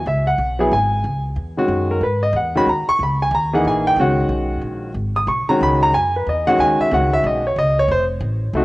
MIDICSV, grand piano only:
0, 0, Header, 1, 2, 480
1, 0, Start_track
1, 0, Tempo, 326087
1, 91, Time_signature, 3, 2, 24, 8
1, 12731, End_track
2, 0, Start_track
2, 0, Title_t, "Grand piano"
2, 0, Program_c, 0, 0
2, 108, Note_on_c, 0, 76, 85
2, 394, Note_off_c, 0, 76, 0
2, 400, Note_on_c, 0, 78, 92
2, 870, Note_on_c, 0, 54, 75
2, 871, Note_on_c, 0, 59, 71
2, 888, Note_on_c, 0, 64, 75
2, 889, Note_on_c, 0, 68, 88
2, 1007, Note_off_c, 0, 78, 0
2, 1031, Note_off_c, 0, 54, 0
2, 1031, Note_off_c, 0, 59, 0
2, 1040, Note_off_c, 0, 64, 0
2, 1040, Note_off_c, 0, 68, 0
2, 1073, Note_on_c, 0, 80, 98
2, 1791, Note_off_c, 0, 80, 0
2, 2317, Note_on_c, 0, 51, 65
2, 2327, Note_on_c, 0, 61, 59
2, 2328, Note_on_c, 0, 56, 66
2, 2335, Note_on_c, 0, 66, 88
2, 2812, Note_on_c, 0, 70, 80
2, 2936, Note_off_c, 0, 51, 0
2, 2941, Note_off_c, 0, 61, 0
2, 2942, Note_off_c, 0, 56, 0
2, 2945, Note_off_c, 0, 66, 0
2, 2974, Note_off_c, 0, 70, 0
2, 2992, Note_on_c, 0, 71, 81
2, 3276, Note_off_c, 0, 71, 0
2, 3279, Note_on_c, 0, 75, 89
2, 3448, Note_off_c, 0, 75, 0
2, 3478, Note_on_c, 0, 78, 80
2, 3759, Note_off_c, 0, 78, 0
2, 3759, Note_on_c, 0, 51, 88
2, 3773, Note_on_c, 0, 56, 71
2, 3781, Note_on_c, 0, 61, 76
2, 3783, Note_on_c, 0, 66, 92
2, 3786, Note_on_c, 0, 83, 109
2, 3916, Note_off_c, 0, 51, 0
2, 3922, Note_off_c, 0, 56, 0
2, 3926, Note_off_c, 0, 61, 0
2, 3927, Note_off_c, 0, 66, 0
2, 3942, Note_off_c, 0, 83, 0
2, 3963, Note_on_c, 0, 82, 88
2, 4242, Note_off_c, 0, 82, 0
2, 4251, Note_on_c, 0, 85, 115
2, 4414, Note_off_c, 0, 85, 0
2, 4460, Note_on_c, 0, 83, 86
2, 4731, Note_off_c, 0, 83, 0
2, 4744, Note_on_c, 0, 80, 97
2, 4901, Note_off_c, 0, 80, 0
2, 4926, Note_on_c, 0, 82, 94
2, 5201, Note_on_c, 0, 52, 79
2, 5204, Note_off_c, 0, 82, 0
2, 5208, Note_on_c, 0, 58, 70
2, 5215, Note_on_c, 0, 63, 74
2, 5216, Note_on_c, 0, 68, 85
2, 5225, Note_on_c, 0, 78, 87
2, 5382, Note_off_c, 0, 78, 0
2, 5409, Note_on_c, 0, 80, 93
2, 5685, Note_off_c, 0, 80, 0
2, 5699, Note_on_c, 0, 79, 107
2, 5819, Note_off_c, 0, 52, 0
2, 5823, Note_off_c, 0, 58, 0
2, 5826, Note_off_c, 0, 63, 0
2, 5827, Note_off_c, 0, 68, 0
2, 5859, Note_off_c, 0, 79, 0
2, 5859, Note_on_c, 0, 51, 72
2, 5875, Note_on_c, 0, 56, 59
2, 5882, Note_on_c, 0, 66, 84
2, 5884, Note_on_c, 0, 61, 64
2, 5898, Note_on_c, 0, 78, 86
2, 6776, Note_off_c, 0, 78, 0
2, 7190, Note_off_c, 0, 51, 0
2, 7198, Note_off_c, 0, 56, 0
2, 7202, Note_off_c, 0, 66, 0
2, 7203, Note_off_c, 0, 61, 0
2, 7599, Note_on_c, 0, 87, 101
2, 7768, Note_off_c, 0, 87, 0
2, 7776, Note_on_c, 0, 85, 87
2, 8069, Note_off_c, 0, 85, 0
2, 8081, Note_on_c, 0, 51, 82
2, 8082, Note_on_c, 0, 82, 100
2, 8092, Note_on_c, 0, 56, 70
2, 8099, Note_on_c, 0, 61, 81
2, 8105, Note_on_c, 0, 66, 79
2, 8250, Note_off_c, 0, 82, 0
2, 8285, Note_on_c, 0, 83, 108
2, 8563, Note_off_c, 0, 83, 0
2, 8578, Note_on_c, 0, 82, 116
2, 8699, Note_off_c, 0, 51, 0
2, 8704, Note_off_c, 0, 56, 0
2, 8708, Note_off_c, 0, 61, 0
2, 8711, Note_off_c, 0, 66, 0
2, 8738, Note_off_c, 0, 82, 0
2, 8748, Note_on_c, 0, 80, 101
2, 9034, Note_off_c, 0, 80, 0
2, 9072, Note_on_c, 0, 71, 69
2, 9225, Note_off_c, 0, 71, 0
2, 9260, Note_on_c, 0, 75, 80
2, 9521, Note_on_c, 0, 51, 82
2, 9525, Note_on_c, 0, 78, 110
2, 9530, Note_off_c, 0, 75, 0
2, 9534, Note_on_c, 0, 56, 69
2, 9538, Note_on_c, 0, 61, 69
2, 9546, Note_on_c, 0, 66, 85
2, 9691, Note_off_c, 0, 78, 0
2, 9717, Note_on_c, 0, 80, 110
2, 9998, Note_off_c, 0, 80, 0
2, 10020, Note_on_c, 0, 76, 99
2, 10138, Note_off_c, 0, 51, 0
2, 10145, Note_off_c, 0, 56, 0
2, 10147, Note_off_c, 0, 61, 0
2, 10151, Note_off_c, 0, 66, 0
2, 10178, Note_off_c, 0, 76, 0
2, 10179, Note_on_c, 0, 51, 63
2, 10181, Note_on_c, 0, 56, 62
2, 10189, Note_on_c, 0, 61, 59
2, 10199, Note_on_c, 0, 66, 78
2, 10213, Note_on_c, 0, 78, 93
2, 10486, Note_off_c, 0, 78, 0
2, 10501, Note_on_c, 0, 76, 104
2, 10659, Note_off_c, 0, 76, 0
2, 10696, Note_on_c, 0, 75, 85
2, 10897, Note_off_c, 0, 51, 0
2, 10898, Note_off_c, 0, 56, 0
2, 10902, Note_off_c, 0, 61, 0
2, 10907, Note_off_c, 0, 66, 0
2, 10968, Note_off_c, 0, 75, 0
2, 10992, Note_on_c, 0, 73, 86
2, 11144, Note_off_c, 0, 73, 0
2, 11166, Note_on_c, 0, 75, 101
2, 11443, Note_off_c, 0, 75, 0
2, 11471, Note_on_c, 0, 73, 106
2, 11623, Note_off_c, 0, 73, 0
2, 11652, Note_on_c, 0, 72, 103
2, 11821, Note_off_c, 0, 72, 0
2, 12585, Note_on_c, 0, 57, 77
2, 12589, Note_on_c, 0, 60, 72
2, 12601, Note_on_c, 0, 63, 71
2, 12611, Note_on_c, 0, 66, 80
2, 12731, Note_off_c, 0, 57, 0
2, 12731, Note_off_c, 0, 60, 0
2, 12731, Note_off_c, 0, 63, 0
2, 12731, Note_off_c, 0, 66, 0
2, 12731, End_track
0, 0, End_of_file